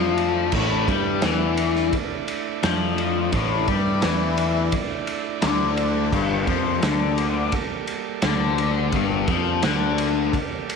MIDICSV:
0, 0, Header, 1, 5, 480
1, 0, Start_track
1, 0, Tempo, 700117
1, 370, Time_signature, 4, 2, 24, 8
1, 7375, End_track
2, 0, Start_track
2, 0, Title_t, "Transistor combo organ"
2, 0, Program_c, 0, 18
2, 0, Note_on_c, 0, 57, 59
2, 0, Note_on_c, 0, 62, 55
2, 0, Note_on_c, 0, 64, 58
2, 0, Note_on_c, 0, 74, 66
2, 4172, Note_off_c, 0, 57, 0
2, 4174, Note_off_c, 0, 64, 0
2, 4177, Note_off_c, 0, 62, 0
2, 4208, Note_on_c, 0, 55, 63
2, 4211, Note_on_c, 0, 58, 54
2, 4212, Note_on_c, 0, 69, 56
2, 7375, Note_off_c, 0, 55, 0
2, 7375, Note_off_c, 0, 58, 0
2, 7375, Note_off_c, 0, 69, 0
2, 7375, Note_off_c, 0, 74, 0
2, 7375, End_track
3, 0, Start_track
3, 0, Title_t, "Distorted electric guitar"
3, 0, Program_c, 1, 30
3, 0, Note_on_c, 1, 53, 99
3, 362, Note_off_c, 1, 53, 0
3, 369, Note_on_c, 1, 45, 99
3, 602, Note_off_c, 1, 45, 0
3, 604, Note_on_c, 1, 55, 100
3, 839, Note_off_c, 1, 55, 0
3, 846, Note_on_c, 1, 52, 101
3, 1319, Note_off_c, 1, 52, 0
3, 1804, Note_on_c, 1, 53, 94
3, 2278, Note_off_c, 1, 53, 0
3, 2281, Note_on_c, 1, 45, 91
3, 2516, Note_off_c, 1, 45, 0
3, 2523, Note_on_c, 1, 55, 100
3, 2757, Note_off_c, 1, 55, 0
3, 2757, Note_on_c, 1, 52, 107
3, 3234, Note_off_c, 1, 52, 0
3, 3712, Note_on_c, 1, 50, 97
3, 4192, Note_off_c, 1, 50, 0
3, 4197, Note_on_c, 1, 43, 90
3, 4435, Note_off_c, 1, 43, 0
3, 4435, Note_on_c, 1, 53, 100
3, 4674, Note_off_c, 1, 53, 0
3, 4681, Note_on_c, 1, 50, 95
3, 5157, Note_off_c, 1, 50, 0
3, 5643, Note_on_c, 1, 50, 93
3, 6119, Note_off_c, 1, 50, 0
3, 6130, Note_on_c, 1, 43, 103
3, 6363, Note_off_c, 1, 43, 0
3, 6368, Note_on_c, 1, 53, 98
3, 6601, Note_off_c, 1, 53, 0
3, 6607, Note_on_c, 1, 50, 98
3, 7082, Note_off_c, 1, 50, 0
3, 7375, End_track
4, 0, Start_track
4, 0, Title_t, "Picked electric bass"
4, 0, Program_c, 2, 34
4, 0, Note_on_c, 2, 41, 85
4, 341, Note_off_c, 2, 41, 0
4, 364, Note_on_c, 2, 33, 94
4, 589, Note_off_c, 2, 33, 0
4, 603, Note_on_c, 2, 43, 96
4, 828, Note_off_c, 2, 43, 0
4, 846, Note_on_c, 2, 40, 90
4, 1299, Note_off_c, 2, 40, 0
4, 1811, Note_on_c, 2, 41, 86
4, 2261, Note_off_c, 2, 41, 0
4, 2279, Note_on_c, 2, 33, 87
4, 2506, Note_off_c, 2, 33, 0
4, 2521, Note_on_c, 2, 43, 85
4, 2746, Note_off_c, 2, 43, 0
4, 2769, Note_on_c, 2, 40, 90
4, 3220, Note_off_c, 2, 40, 0
4, 3730, Note_on_c, 2, 38, 87
4, 4181, Note_off_c, 2, 38, 0
4, 4199, Note_on_c, 2, 31, 81
4, 4426, Note_off_c, 2, 31, 0
4, 4440, Note_on_c, 2, 41, 91
4, 4667, Note_off_c, 2, 41, 0
4, 4676, Note_on_c, 2, 38, 83
4, 5134, Note_off_c, 2, 38, 0
4, 5646, Note_on_c, 2, 38, 85
4, 6100, Note_off_c, 2, 38, 0
4, 6123, Note_on_c, 2, 31, 83
4, 6349, Note_off_c, 2, 31, 0
4, 6362, Note_on_c, 2, 41, 92
4, 6589, Note_off_c, 2, 41, 0
4, 6609, Note_on_c, 2, 38, 89
4, 7062, Note_off_c, 2, 38, 0
4, 7375, End_track
5, 0, Start_track
5, 0, Title_t, "Drums"
5, 120, Note_on_c, 9, 51, 64
5, 188, Note_off_c, 9, 51, 0
5, 355, Note_on_c, 9, 49, 93
5, 361, Note_on_c, 9, 36, 97
5, 424, Note_off_c, 9, 49, 0
5, 429, Note_off_c, 9, 36, 0
5, 603, Note_on_c, 9, 36, 100
5, 605, Note_on_c, 9, 51, 69
5, 671, Note_off_c, 9, 36, 0
5, 673, Note_off_c, 9, 51, 0
5, 835, Note_on_c, 9, 51, 87
5, 839, Note_on_c, 9, 38, 99
5, 903, Note_off_c, 9, 51, 0
5, 907, Note_off_c, 9, 38, 0
5, 1079, Note_on_c, 9, 51, 77
5, 1148, Note_off_c, 9, 51, 0
5, 1204, Note_on_c, 9, 38, 32
5, 1272, Note_off_c, 9, 38, 0
5, 1321, Note_on_c, 9, 51, 85
5, 1323, Note_on_c, 9, 36, 102
5, 1390, Note_off_c, 9, 51, 0
5, 1391, Note_off_c, 9, 36, 0
5, 1562, Note_on_c, 9, 51, 71
5, 1631, Note_off_c, 9, 51, 0
5, 1804, Note_on_c, 9, 51, 97
5, 1808, Note_on_c, 9, 38, 109
5, 1873, Note_off_c, 9, 51, 0
5, 1877, Note_off_c, 9, 38, 0
5, 2043, Note_on_c, 9, 51, 69
5, 2111, Note_off_c, 9, 51, 0
5, 2279, Note_on_c, 9, 51, 91
5, 2283, Note_on_c, 9, 36, 96
5, 2348, Note_off_c, 9, 51, 0
5, 2352, Note_off_c, 9, 36, 0
5, 2521, Note_on_c, 9, 51, 67
5, 2523, Note_on_c, 9, 36, 106
5, 2589, Note_off_c, 9, 51, 0
5, 2591, Note_off_c, 9, 36, 0
5, 2756, Note_on_c, 9, 51, 93
5, 2760, Note_on_c, 9, 38, 100
5, 2825, Note_off_c, 9, 51, 0
5, 2829, Note_off_c, 9, 38, 0
5, 3000, Note_on_c, 9, 51, 80
5, 3068, Note_off_c, 9, 51, 0
5, 3237, Note_on_c, 9, 51, 98
5, 3241, Note_on_c, 9, 36, 108
5, 3306, Note_off_c, 9, 51, 0
5, 3309, Note_off_c, 9, 36, 0
5, 3477, Note_on_c, 9, 51, 78
5, 3546, Note_off_c, 9, 51, 0
5, 3715, Note_on_c, 9, 51, 99
5, 3720, Note_on_c, 9, 38, 113
5, 3784, Note_off_c, 9, 51, 0
5, 3788, Note_off_c, 9, 38, 0
5, 3958, Note_on_c, 9, 51, 68
5, 4027, Note_off_c, 9, 51, 0
5, 4200, Note_on_c, 9, 36, 100
5, 4201, Note_on_c, 9, 57, 88
5, 4268, Note_off_c, 9, 36, 0
5, 4270, Note_off_c, 9, 57, 0
5, 4438, Note_on_c, 9, 51, 68
5, 4439, Note_on_c, 9, 36, 108
5, 4506, Note_off_c, 9, 51, 0
5, 4507, Note_off_c, 9, 36, 0
5, 4679, Note_on_c, 9, 51, 85
5, 4683, Note_on_c, 9, 38, 103
5, 4748, Note_off_c, 9, 51, 0
5, 4752, Note_off_c, 9, 38, 0
5, 4920, Note_on_c, 9, 51, 71
5, 4989, Note_off_c, 9, 51, 0
5, 5156, Note_on_c, 9, 51, 86
5, 5160, Note_on_c, 9, 36, 95
5, 5225, Note_off_c, 9, 51, 0
5, 5228, Note_off_c, 9, 36, 0
5, 5398, Note_on_c, 9, 51, 66
5, 5467, Note_off_c, 9, 51, 0
5, 5635, Note_on_c, 9, 51, 97
5, 5639, Note_on_c, 9, 38, 121
5, 5704, Note_off_c, 9, 51, 0
5, 5708, Note_off_c, 9, 38, 0
5, 5883, Note_on_c, 9, 51, 66
5, 5952, Note_off_c, 9, 51, 0
5, 6118, Note_on_c, 9, 51, 82
5, 6120, Note_on_c, 9, 36, 99
5, 6187, Note_off_c, 9, 51, 0
5, 6189, Note_off_c, 9, 36, 0
5, 6359, Note_on_c, 9, 51, 71
5, 6362, Note_on_c, 9, 36, 99
5, 6428, Note_off_c, 9, 51, 0
5, 6430, Note_off_c, 9, 36, 0
5, 6599, Note_on_c, 9, 51, 90
5, 6603, Note_on_c, 9, 38, 106
5, 6667, Note_off_c, 9, 51, 0
5, 6672, Note_off_c, 9, 38, 0
5, 6843, Note_on_c, 9, 51, 82
5, 6911, Note_off_c, 9, 51, 0
5, 7085, Note_on_c, 9, 36, 105
5, 7088, Note_on_c, 9, 51, 97
5, 7154, Note_off_c, 9, 36, 0
5, 7156, Note_off_c, 9, 51, 0
5, 7333, Note_on_c, 9, 51, 78
5, 7375, Note_off_c, 9, 51, 0
5, 7375, End_track
0, 0, End_of_file